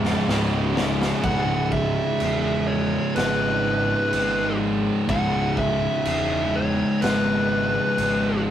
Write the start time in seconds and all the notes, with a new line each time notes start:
Already playing: E1 C#2 G#2 C#3
0.05 snare
0.26 C#1 C#2 G#2 C#3, snare
0.74 C#2 G#2 C#3, snare
0.78 C#2
1.02 snare
1.22 C#1 C#2 G#2 C#3 F#5, kick, crash
1.72 E5, kick
2.20 E1, crash
2.67 C#5
3.16 G#1 B4, snare, crash
4.13 G#1, crash
5.07 C#1 C#2 G#2 C#3 F#5, kick, crash
5.57 E5, kick
6.05 E1, crash
6.55 C#5
7.02 G#1 B4, snare, crash
7.98 G#1, crash